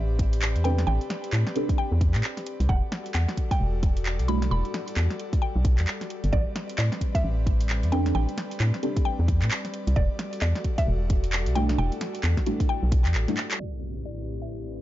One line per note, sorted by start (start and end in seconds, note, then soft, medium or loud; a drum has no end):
0.00 0.57 A1 medium
0.00 2.66 C4 medium
0.00 2.66 G4 medium
0.00 2.66 B4 medium
0.00 2.66 D5 medium
0.19 kick medium
0.19 closed hi-hat loud
0.33 closed hi-hat medium
0.42 clap loud
0.56 0.85 E2 loud
0.56 closed hi-hat soft
0.64 1.53 C4 medium
0.64 1.53 D4 medium
0.64 1.53 G4 medium
0.64 1.53 A4 medium
0.64 1.53 B4 loud
0.64 0.76 G5 medium
0.64 closed hi-hat medium
0.78 snare medium
0.78 closed hi-hat medium
0.87 0.99 A1 loud
0.87 1.03 G5 loud
1.01 closed hi-hat soft
1.10 snare medium
1.10 closed hi-hat loud
1.24 closed hi-hat medium
1.33 1.45 A2 medium
1.33 clap loud
1.47 snare medium
1.47 closed hi-hat soft
1.56 2.68 C4 medium
1.56 2.68 D4 medium
1.56 2.68 G4 medium
1.56 2.68 A4 medium
1.56 2.68 B4 medium
1.56 closed hi-hat medium
1.69 kick loud
1.69 closed hi-hat medium
1.78 1.94 G5 medium
1.92 2.16 E2 medium
2.01 kick loud
2.01 closed hi-hat loud
2.15 2.23 A2 medium
2.15 clap medium
2.15 closed hi-hat medium
2.24 clap loud
2.37 snare soft
2.37 closed hi-hat soft
2.46 closed hi-hat medium
2.60 2.68 C2 medium
2.60 closed hi-hat medium
2.69 2.81 E1 loud
2.69 13.56 G3 medium
2.69 6.29 F#4 medium
2.69 6.29 A4 medium
2.69 6.29 D5 medium
2.69 2.81 F#5 loud
2.69 kick loud
2.92 snare medium
2.92 closed hi-hat loud
3.06 closed hi-hat medium
3.15 3.27 E2 medium
3.15 3.31 F#5 medium
3.15 clap loud
3.29 snare medium
3.29 closed hi-hat soft
3.37 kick medium
3.37 closed hi-hat medium
3.51 3.64 G5 medium
3.51 kick loud
3.51 closed hi-hat medium
3.60 4.21 E1 medium
3.83 kick loud
3.83 closed hi-hat loud
3.97 closed hi-hat medium
4.06 clap loud
4.19 4.49 B1 loud
4.19 closed hi-hat soft
4.28 5.17 G3 medium
4.28 5.17 A3 medium
4.28 5.17 D4 medium
4.28 5.17 E4 medium
4.28 5.17 F#4 loud
4.28 4.40 B5 medium
4.28 closed hi-hat medium
4.42 snare medium
4.42 closed hi-hat medium
4.51 4.63 E1 medium
4.51 4.67 B5 loud
4.65 closed hi-hat soft
4.74 snare medium
4.74 closed hi-hat loud
4.88 closed hi-hat medium
4.97 5.08 E2 medium
4.97 clap loud
5.10 snare medium
5.10 closed hi-hat soft
5.20 closed hi-hat medium
5.33 kick loud
5.33 closed hi-hat medium
5.42 5.58 G5 medium
5.56 5.80 B1 medium
5.65 kick loud
5.65 closed hi-hat loud
5.78 5.86 E2 medium
5.78 clap medium
5.78 closed hi-hat medium
5.87 clap loud
6.01 snare soft
6.01 closed hi-hat soft
6.10 closed hi-hat medium
6.24 6.32 G1 medium
6.24 closed hi-hat medium
6.33 6.45 A1 loud
6.33 9.93 C4 medium
6.33 9.93 B4 medium
6.33 6.44 D5 loud
6.33 13.56 D5 medium
6.33 kick loud
6.56 snare medium
6.56 closed hi-hat medium
6.69 closed hi-hat medium
6.78 6.90 A2 medium
6.78 6.94 D5 medium
6.78 clap loud
6.92 snare medium
6.92 closed hi-hat soft
7.01 kick medium
7.01 closed hi-hat medium
7.15 7.27 E5 medium
7.15 kick loud
7.15 closed hi-hat medium
7.24 7.85 A1 medium
7.47 kick loud
7.47 closed hi-hat medium
7.61 closed hi-hat medium
7.70 clap loud
7.83 8.13 E2 loud
7.83 closed hi-hat medium
7.92 8.81 C4 medium
7.92 8.81 D4 medium
7.92 8.81 G4 medium
7.92 8.81 A4 medium
7.92 8.81 B4 loud
7.92 8.04 G5 medium
7.92 closed hi-hat medium
8.06 snare soft
8.06 closed hi-hat medium
8.15 8.27 A1 loud
8.15 8.31 G5 loud
8.29 closed hi-hat soft
8.38 snare medium
8.38 closed hi-hat loud
8.51 closed hi-hat medium
8.60 8.72 A2 medium
8.60 clap loud
8.74 snare medium
8.74 closed hi-hat soft
8.83 9.95 C4 medium
8.83 9.95 D4 medium
8.83 9.95 G4 medium
8.83 9.95 A4 medium
8.83 9.95 B4 medium
8.83 closed hi-hat medium
8.96 kick loud
8.96 closed hi-hat medium
9.05 9.21 G5 loud
9.19 9.44 E2 medium
9.28 kick loud
9.28 closed hi-hat loud
9.42 9.50 A2 medium
9.42 clap medium
9.42 closed hi-hat medium
9.51 clap loud
9.65 snare soft
9.65 closed hi-hat medium
9.74 closed hi-hat medium
9.87 9.95 C2 medium
9.87 closed hi-hat medium
9.96 10.08 E1 loud
9.96 13.56 F#4 medium
9.96 13.56 A4 medium
9.96 10.08 D5 loud
9.96 kick loud
10.19 snare medium
10.19 closed hi-hat loud
10.33 closed hi-hat medium
10.42 10.54 E2 medium
10.42 10.58 D5 medium
10.42 clap loud
10.55 snare soft
10.55 closed hi-hat soft
10.64 kick medium
10.64 closed hi-hat medium
10.78 10.91 E5 loud
10.78 kick medium
10.78 closed hi-hat medium
10.87 11.48 E1 medium
11.10 kick loud
11.10 closed hi-hat loud
11.24 closed hi-hat medium
11.33 clap loud
11.46 11.76 B1 loud
11.46 closed hi-hat medium
11.55 12.44 G3 medium
11.55 12.44 A3 medium
11.55 12.44 D4 medium
11.55 12.44 E4 medium
11.55 12.44 F#4 loud
11.55 11.67 G5 medium
11.55 closed hi-hat medium
11.69 snare medium
11.69 closed hi-hat medium
11.78 11.90 E1 loud
11.78 11.94 G5 loud
11.92 closed hi-hat soft
12.01 snare medium
12.01 closed hi-hat loud
12.15 closed hi-hat medium
12.24 12.36 E2 medium
12.24 clap loud
12.37 kick medium
12.37 snare medium
12.37 closed hi-hat soft
12.46 13.26 G3 medium
12.46 13.26 A3 medium
12.46 13.26 D4 medium
12.46 13.26 E4 medium
12.46 13.26 F#4 medium
12.46 closed hi-hat medium
12.60 kick loud
12.60 closed hi-hat medium
12.69 12.85 G5 medium
12.83 13.07 B1 medium
12.92 kick loud
12.92 closed hi-hat loud
13.05 13.16 E2 medium
13.05 clap medium
13.05 closed hi-hat medium
13.14 13.27 A1 medium
13.14 clap loud
13.28 13.34 G3 medium
13.28 13.34 A3 medium
13.28 13.34 D4 medium
13.28 13.34 E4 medium
13.28 13.34 F#4 medium
13.28 snare soft
13.28 closed hi-hat medium
13.37 clap medium
13.37 closed hi-hat medium
13.51 clap loud
13.51 closed hi-hat medium
13.60 14.82 A2 medium
13.60 14.82 C4 medium
13.60 14.82 E4 medium
13.60 14.82 G4 medium
13.60 14.82 B4 medium
13.60 14.82 D5 medium
13.60 13.72 D5 medium
13.60 impact medium
13.96 closed hi-hat medium
14.06 14.22 D5 medium
14.19 closed hi-hat soft
14.42 14.55 E5 medium
14.42 closed hi-hat medium
14.65 closed hi-hat soft